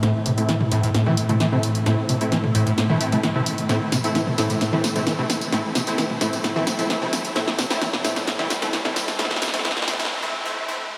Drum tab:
HH |x---o-x-x---o-x-x---o-x-x---o-x-|x---o-x-x---o-x-x---o-o-x---o-x-|x---o-x-x---o-x-x---o-x-x---o-x-|x---o-x-x---o-x-x---o-o-x---o-x-|
TB |--------------------------------|--------------------------------|x---x-x-x---x-x-x---x-x-x---x-x-|x---x-x-x---x-x-x---x-x-x---x-x-|
SD |o-------o-------o-------o-------|o-------o-------o-------o-------|o---o---o---o---o---o---o---o---|o---o---o---o---o---o---o---o---|
T2 |----------o-------o---o---------|----------o-------o---o---------|----------o-------o---o---------|----------o-------o---o---------|

HH |x---o-x-x---o-x-x---o-x-x---o-x-|x---o-x-x---o-x-----------------|
TB |x---x-x-x---x-x-x---x-x-x---x-x-|x---x-x-x---x-x-----------------|
SD |o-o-o-o-o-o-o-o-o-o-o-o-o-o-o-o-|oooooooooooooooo----------------|
T2 |----------o-------o---o---------|--o-------o---------------------|